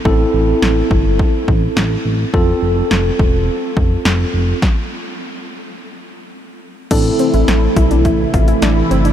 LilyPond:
<<
  \new Staff \with { instrumentName = "Tine electric piano" } { \time 4/4 \key a \minor \tempo 4 = 105 <c' e' a'>1 | <c' f' a'>1 | r1 | <c' e' a'>1 | }
  \new Staff \with { instrumentName = "Synth arpeggio sound" } { \time 4/4 \key a \minor r1 | r1 | r1 | d'8 c'16 e'16 c'8 e'16 d'16 e'8 f'16 e'16 d'8 c'16 d'16 | }
  \new Staff \with { instrumentName = "Analog synth pad" } { \clef bass \time 4/4 \key a \minor r1 | r1 | r1 | <c e a e'>1 | }
  \new Staff \with { instrumentName = "Analog synth bass" } { \clef bass \time 4/4 \key a \minor a,,8 a,,8 a,,8 g,,8. r16 a,,8 a,,8 a,,8 | f,,8 f,,8 f,,8 e,,8. r16 f,,8 f,,8 f,,8 | r1 | a,,8 r16 a,,16 a,,8 b,,8 a,,8 a,,8 a,,8 g,,8 | }
  \new DrumStaff \with { instrumentName = "Drums" } \drummode { \time 4/4 bd4 sn8 bd8 bd8 bd8 sn4 | bd4 sn8 bd8 r8 bd8 sn4 | <bd sn>4 r4 r4 r4 | <cymc hh bd>8 hh16 hh16 <hh sn>8 <hh bd>16 hh16 <hh bd>8 <hh bd>16 hh16 <hh sn>8 hh16 hh16 | }
>>